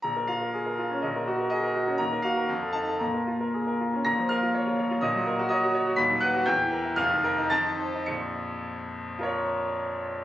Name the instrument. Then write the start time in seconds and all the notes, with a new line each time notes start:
grand piano
0.02 A#1 A#5
0.16 A#4
0.27 F4 F5
0.41 A#4
0.54 G#4
0.66 A#4
0.78 F4
0.91 C#4
1.02 A#1 D#5
1.16 A#4
1.27 F#4
1.39 A#4
1.50 G#4 D#5
1.63 A#4
1.75 F#4
1.88 C#4
1.98 D#2 A#5
2.12 A#4
2.22 F#4 F5
2.37 A#4
2.49 F2
2.62 A4
2.73 D#4 A5
2.88 A4
2.99 A#2 A#5
3.14 A#4
3.27 F4
3.41 A#4
3.54 G#4
3.67 A#4
3.81 F4
3.94 C#4
4.05 A#1 A#2 A#5 A#6
4.19 F3
4.29 A#4 F5 F6
4.42 F4
4.55 C#5
4.67 F4
4.79 C#5
4.91 F4
5.01 A#1 A#2 D#5 D#6
5.15 F#3
5.27 A#4
5.39 F#4
5.49 C#5 D#5 D#6
5.63 F#4
5.75 C#5
5.86 F#4
5.96 D#1 D#2 B5 B6
6.10 F#3
6.21 B4 F#5 F#6
6.34 F#4
6.46 E2 G5 G6
6.60 E3
6.72 A#4
6.85 E4
6.96 F1 F2 F5 F6
7.11 D#3
7.24 A#4
7.38 D#4
7.50 F2 A5 A6
7.65 D#3
7.79 C5
7.94 D#4
8.06 A#1 F2 C#7
9.19 F4 A#4
9.23 C#5